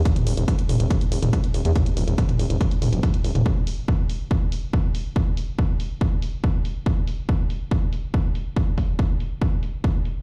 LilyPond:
<<
  \new Staff \with { instrumentName = "Analog synth bass" } { \clef bass \time 4/4 \key d \mixolydian \tempo 4 = 141 r8 e,,16 e,,16 r8 e,,16 e,,16 r8 e,,16 e,,16 r8 e,,16 e,16 | r8 d,,16 e,,16 r8 e,,16 e,,16 r8 e,,16 d,,16 r8 e,,16 e,,16 | r1 | r1 |
r1 | r1 | }
  \new DrumStaff \with { instrumentName = "Drums" } \drummode { \time 4/4 <hh bd>16 <hh toml>16 hho16 hh16 <hh bd>16 hh16 <hho toml>16 hh16 <hh bd>16 hh16 hho16 <hh toml>16 <hh bd>16 hh16 hho16 hh16 | <hh bd toml>16 hh16 hho16 hh16 <hh bd>16 <hh toml>16 hho16 hh16 <hh bd>16 hh16 <hho toml>16 hh16 <hh bd>16 hh16 hho16 <hh toml>16 | bd8 hho8 bd8 hho8 bd8 hho8 bd8 hho8 | bd8 hho8 bd8 hho8 bd8 hho8 bd8 hho8 |
bd8 hho8 bd8 hho8 bd8 hho8 bd8 hho8 | bd8 <hho bd>8 bd8 hho8 bd8 hho8 bd8 hho8 | }
>>